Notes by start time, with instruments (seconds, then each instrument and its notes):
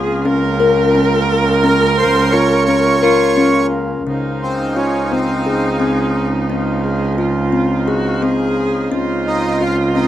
Already playing: cello C#2, harmonium C#3 A#3 F4, kalimba F4, viola G#4
0.25 kalimba C#4, viola A#4
0.60 kalimba A#4
0.95 kalimba C#4
1.64 kalimba C#4, accordion A#4
1.98 accordion C5
2.31 kalimba F4, accordion C#5
2.65 kalimba C#4, accordion C#5
3.02 viola F4, kalimba A#4
3.37 kalimba C#4
4.06 cello C#2, kalimba C#3, harmonium C#3 D#4 C5 F5, viola D#4
4.42 accordion C4
4.76 accordion C#4, kalimba F4
5.11 accordion C4, kalimba C4
5.46 kalimba G#4
5.79 accordion G#3, kalimba C4
6.50 kalimba C#4
6.83 viola G#4
7.18 kalimba F4, viola F4
7.52 kalimba C4
7.87 viola F#4, kalimba G#4
8.22 kalimba C4, viola G#4
8.91 cello C#2, kalimba C#4, viola F4
9.27 accordion D#4
9.61 accordion F4, kalimba F4
9.94 kalimba C4, accordion D#4